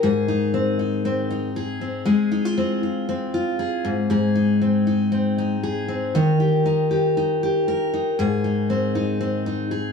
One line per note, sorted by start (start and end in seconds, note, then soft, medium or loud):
0.00 2.07 G#2 medium
0.00 1.48 D#3 medium
0.00 1.56 G#4 medium
0.28 0.78 D#4 medium
0.54 1.05 C4 medium
0.79 1.29 D#4 medium
1.05 1.81 C4 medium
1.30 2.12 D#4 medium
1.56 2.06 G#4 medium
1.81 2.57 C4 medium
2.06 5.55 G#3 medium
2.06 3.59 G#4 medium
2.32 2.45 D#4 medium
2.45 2.82 F4 soft
2.58 3.08 C4 medium
2.83 3.33 F4 soft
3.09 4.61 C4 medium
3.34 3.90 F4 medium
3.59 4.10 G#4 medium
3.85 4.09 G#2 medium
4.10 6.15 G#2 medium
4.10 5.62 G#4 medium
4.36 4.86 D#4 medium
4.62 5.11 C4 soft
4.87 5.38 D#4 medium
5.12 5.87 C4 medium
5.38 6.40 D#4 medium
5.63 6.15 G#4 medium
5.88 6.20 C4 medium
6.15 9.65 D#3 medium
6.15 7.67 A#4 medium
6.40 6.90 G4 soft
6.66 7.17 D#4 medium
6.91 7.42 G4 soft
7.17 7.93 D#4 soft
7.43 8.25 G4 medium
7.68 8.19 A#4 medium
7.94 8.24 D#4 soft
8.19 9.92 G#2 medium
8.19 9.71 G#4 medium
8.44 8.94 D#4 medium
8.70 9.20 C4 medium
8.95 9.45 D#4 medium
9.21 9.92 C4 medium
9.46 9.92 D#4 soft
9.71 9.92 G#4 medium